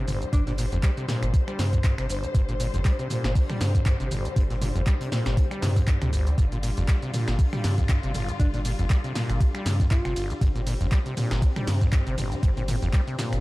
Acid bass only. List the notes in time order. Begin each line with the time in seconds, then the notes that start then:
0.08 G1
0.22 G2
0.33 G2
0.47 A#2
0.58 A#2
0.72 F2
0.83 G3
0.97 C3
1.08 A#2
1.34 G1
1.48 G3
1.59 C3
1.73 F2
1.98 C3
2.09 G1
2.23 G2
2.35 G2
2.49 A#2
2.60 A#2
2.74 F2
2.85 G3
2.99 C3
3.10 A#2
3.35 G1
3.50 G3
3.61 C3
3.75 F2
4.00 C3
4.11 G1
4.25 G2
4.36 G2
4.50 A#2
4.61 A#2
4.76 F2
4.87 G3
5.01 C3
5.12 A#2
5.37 G1
5.51 G3
5.62 C3
5.76 F2
6.02 C3
6.13 G1
6.27 G2
6.38 G2
6.52 A#2
6.63 A#2
6.77 F2
6.88 G3
7.03 C3
7.14 A#2
7.39 G1
7.53 G3
7.64 C3
7.78 F2
8.03 C3
8.14 G1
8.29 G2
8.40 G2
8.54 A#2
8.65 A#2
8.79 F2
8.90 G3
9.04 C3
9.15 A#2
9.40 G1
9.54 G3
9.66 C3
9.80 F2
10.05 C3
10.16 G1
10.30 G2
10.41 G2
10.55 A#2
10.67 A#2
10.81 F2
10.92 G3
11.06 C3
11.17 A#2
11.42 G1
11.56 G3
11.67 C3
11.81 F2
12.07 C3
12.18 G1
12.32 G2
12.43 G2
12.57 A#2
12.68 A#2
12.82 F2
12.94 G3
13.08 C3
13.19 A#2